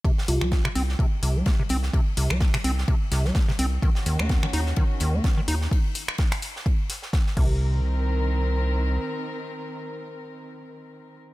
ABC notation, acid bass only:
X:1
M:4/4
L:1/16
Q:"Swing 16ths" 1/4=127
K:Cm
V:1 name="Acid bass" clef=bass
C, z C, G, B, C, C z C, z C, G, B, C, C z | C, z C, G, B, C, C z C, z C, G, B, C, C z | E, z E, B, _D E, E z E, z E, B, D E, E z | z12 z2 C,2- |
C,2 z12 z2 | z16 |]